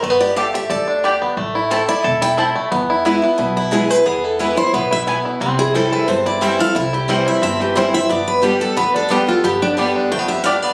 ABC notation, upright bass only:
X:1
M:4/4
L:1/8
Q:"Swing" 1/4=178
K:Ephr
V:1 name="Upright bass" clef=bass
G,,,4 D,,4 | A,,,4 E,,,4 | E,,4 B,,,4 | E,,4 B,,,4 |
C,,4 G,,,4 | C,,4 G,,,4 | G,,,4 D,,4 | G,,,4 D,,4 |]